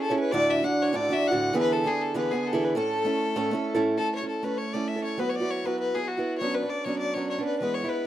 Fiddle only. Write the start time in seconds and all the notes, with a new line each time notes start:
0.01 A4
0.19 B4
0.32 D5
0.50 E5
0.64 F#5
0.82 C#5
0.95 D5
1.13 E5
1.27 F#5
1.58 B4
1.72 A4
1.87 G#4
2.01 A4
2.17 B4
2.31 G#4
2.46 A4
2.64 B4
2.77 A4
3.98 A4
4.15 C#5
4.28 A4
4.44 B4
4.58 C#5
4.73 D5
4.88 E5
5.04 C#5
5.19 B4
5.29 C#5
5.35 D5
5.50 C#5
5.66 B4
5.80 B4
5.95 G#4
6.08 F#4
6.38 C#5
6.54 B4
6.69 D5
6.85 C#5
6.99 D5
7.14 C#5
7.30 C#5
7.45 B4
7.59 B4
7.74 C#5
7.89 B4